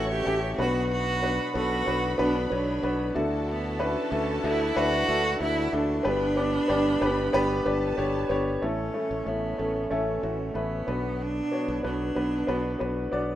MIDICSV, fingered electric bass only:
0, 0, Header, 1, 2, 480
1, 0, Start_track
1, 0, Tempo, 643087
1, 679, Time_signature, 4, 2, 24, 8
1, 9967, End_track
2, 0, Start_track
2, 0, Title_t, "Fingered electric bass"
2, 0, Program_c, 0, 33
2, 0, Note_on_c, 0, 33, 100
2, 156, Note_off_c, 0, 33, 0
2, 198, Note_on_c, 0, 33, 101
2, 395, Note_off_c, 0, 33, 0
2, 436, Note_on_c, 0, 35, 104
2, 1027, Note_off_c, 0, 35, 0
2, 1159, Note_on_c, 0, 35, 94
2, 1356, Note_off_c, 0, 35, 0
2, 1399, Note_on_c, 0, 35, 87
2, 1595, Note_off_c, 0, 35, 0
2, 1636, Note_on_c, 0, 35, 97
2, 1834, Note_off_c, 0, 35, 0
2, 1878, Note_on_c, 0, 35, 107
2, 2075, Note_off_c, 0, 35, 0
2, 2115, Note_on_c, 0, 35, 97
2, 2313, Note_off_c, 0, 35, 0
2, 2355, Note_on_c, 0, 38, 102
2, 2946, Note_off_c, 0, 38, 0
2, 3074, Note_on_c, 0, 38, 100
2, 3272, Note_off_c, 0, 38, 0
2, 3313, Note_on_c, 0, 38, 108
2, 3511, Note_off_c, 0, 38, 0
2, 3556, Note_on_c, 0, 38, 94
2, 3753, Note_off_c, 0, 38, 0
2, 3796, Note_on_c, 0, 38, 93
2, 3993, Note_off_c, 0, 38, 0
2, 4034, Note_on_c, 0, 38, 92
2, 4231, Note_off_c, 0, 38, 0
2, 4277, Note_on_c, 0, 38, 91
2, 4473, Note_off_c, 0, 38, 0
2, 4518, Note_on_c, 0, 31, 93
2, 4911, Note_off_c, 0, 31, 0
2, 4999, Note_on_c, 0, 31, 100
2, 5195, Note_off_c, 0, 31, 0
2, 5236, Note_on_c, 0, 31, 89
2, 5433, Note_off_c, 0, 31, 0
2, 5480, Note_on_c, 0, 31, 92
2, 5675, Note_off_c, 0, 31, 0
2, 5718, Note_on_c, 0, 31, 96
2, 5914, Note_off_c, 0, 31, 0
2, 5955, Note_on_c, 0, 31, 89
2, 6152, Note_off_c, 0, 31, 0
2, 6193, Note_on_c, 0, 31, 97
2, 6391, Note_off_c, 0, 31, 0
2, 6436, Note_on_c, 0, 33, 81
2, 6633, Note_off_c, 0, 33, 0
2, 6798, Note_on_c, 0, 33, 75
2, 6896, Note_off_c, 0, 33, 0
2, 6915, Note_on_c, 0, 33, 75
2, 7112, Note_off_c, 0, 33, 0
2, 7160, Note_on_c, 0, 33, 74
2, 7355, Note_off_c, 0, 33, 0
2, 7397, Note_on_c, 0, 33, 81
2, 7594, Note_off_c, 0, 33, 0
2, 7637, Note_on_c, 0, 33, 88
2, 7834, Note_off_c, 0, 33, 0
2, 7875, Note_on_c, 0, 33, 82
2, 8073, Note_off_c, 0, 33, 0
2, 8119, Note_on_c, 0, 35, 87
2, 8512, Note_off_c, 0, 35, 0
2, 8721, Note_on_c, 0, 35, 77
2, 8818, Note_off_c, 0, 35, 0
2, 8841, Note_on_c, 0, 35, 88
2, 9037, Note_off_c, 0, 35, 0
2, 9078, Note_on_c, 0, 35, 81
2, 9275, Note_off_c, 0, 35, 0
2, 9318, Note_on_c, 0, 35, 81
2, 9515, Note_off_c, 0, 35, 0
2, 9562, Note_on_c, 0, 35, 87
2, 9758, Note_off_c, 0, 35, 0
2, 9798, Note_on_c, 0, 35, 76
2, 9967, Note_off_c, 0, 35, 0
2, 9967, End_track
0, 0, End_of_file